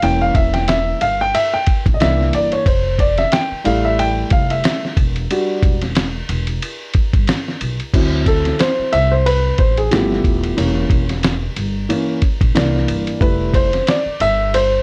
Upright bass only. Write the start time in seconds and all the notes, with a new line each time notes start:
0.03 E1
0.35 E1
1.02 G1
1.86 A#1
2.01 C2
2.34 G1
2.66 F1
3.52 muted upright bass stroke
3.66 A1
4.31 F1
4.97 E1
5.63 E1
6.29 E1
7.14 G1
7.61 B1
7.94 D2
8.79 muted upright bass stroke
8.94 C2
9.59 A1
9.92 G1
10.24 D#1
10.58 E1
10.90 E1
11.57 G1
12.41 A#1
12.55 C2
12.88 G1
13.21 F1
14.06 muted upright bass stroke
14.20 G1